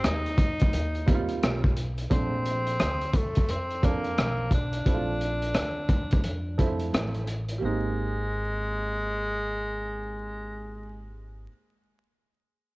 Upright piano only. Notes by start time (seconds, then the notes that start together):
Already playing: G3 A#3 C4 D#4
1.06 G3 A#3 C4 D#4
1.14 F4
2.10 F3 A3 C4 D4
3.83 F3 C4 D4 A4
4.86 F3 A3 C4 E4
4.94 F4
6.58 F3 A3 C4 E4
7.58 A#3 G4
7.63 C4 D#4